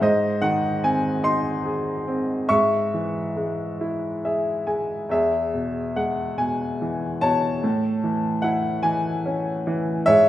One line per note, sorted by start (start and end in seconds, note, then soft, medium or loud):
0.01 2.46 G#2 medium
0.01 1.20 C5 medium
0.01 0.44 D#5 medium
0.41 2.03 D#3 soft
0.41 0.84 F#5 medium
0.84 2.06 C4 medium
0.84 1.26 G#5 medium
1.23 2.47 D#4 medium
1.23 2.46 D#5 medium
1.23 2.54 C6 medium
1.65 2.48 G#4 soft
2.08 2.49 C4 soft
2.49 5.06 G#2 medium
2.49 4.19 E5 medium
2.49 4.19 C#6 medium
2.94 4.63 E3 soft
3.37 4.65 G#3 soft
3.81 5.07 E4 soft
4.25 5.08 G#4 soft
4.25 4.65 E5 soft
4.67 5.09 G#3 soft
4.67 5.07 G#5 soft
5.09 7.58 E2 medium
5.09 6.35 G#4 soft
5.09 5.92 E5 medium
5.54 6.37 B2 soft
5.96 7.59 G#3 soft
5.96 6.36 F#5 medium
6.38 7.21 B2 soft
6.38 7.24 G#5 medium
6.82 7.61 E3 soft
7.21 7.62 B2 soft
7.21 8.40 C#5 medium
7.21 8.47 A5 medium
7.63 10.03 A2 medium
8.04 8.82 E3 soft
8.42 10.02 E4 medium
8.42 8.84 F#5 medium
8.83 9.65 E3 soft
8.83 9.71 G#5 medium
9.26 10.04 C#4 soft
9.67 10.06 E3 medium
10.06 10.29 G#2 medium
10.06 10.29 C#5 medium
10.06 10.29 E5 loud